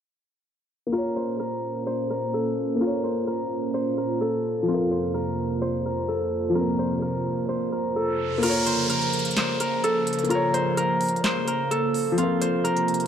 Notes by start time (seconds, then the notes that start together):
0.87 A#3
0.92 A#2 A#3 C#4 F4 A#4
0.98 C#5
1.16 C5
1.40 A#4
1.87 C5
2.10 A#4
2.34 A4
2.75 A#3
2.81 F4 A#4
2.87 C#5
3.04 C5
3.27 A#4
3.74 C5
3.98 A#4
4.21 A4
4.63 F3
4.68 F2 C3 A#3 C4 F4, riser
4.74 A#4
4.91 C5
5.14 A#4
5.62 C5
5.86 A#4
6.08 A4
6.50 F3
6.55 C4 A#4
6.61 A#3
6.79 C5
7.02 A#4
7.49 C5
7.72 A#4
7.96 A4
8.38 A#3
8.43 C#3 F3 A#3 F4 A#4, closed hi-hat, crash, downlifter
8.49 C#5
8.66 C5, closed hi-hat
8.89 A#4, closed hi-hat
9.02 closed hi-hat
9.13 closed hi-hat
9.19 closed hi-hat
9.25 closed hi-hat
9.31 closed hi-hat
9.37 C5, snare, clap, closed hi-hat
9.60 A#4, closed hi-hat
9.84 A4, closed hi-hat
10.07 closed hi-hat
10.13 closed hi-hat
10.19 closed hi-hat
10.24 A#3, closed hi-hat
10.29 F4 A#4, closed hi-hat
10.35 C#5
10.54 C5, closed hi-hat
10.77 A#4, closed hi-hat
11.01 closed hi-hat, open hi-hat
11.09 closed hi-hat
11.16 closed hi-hat
11.24 C5, snare, clap, closed hi-hat
11.48 A#4, closed hi-hat
11.71 A4, closed hi-hat
11.94 open hi-hat
12.12 F3
12.18 C3 F3 C4 F4, closed hi-hat
12.23 A#4
12.41 C5, closed hi-hat
12.64 A#4, closed hi-hat
12.77 closed hi-hat
12.88 closed hi-hat
12.94 closed hi-hat
13.00 closed hi-hat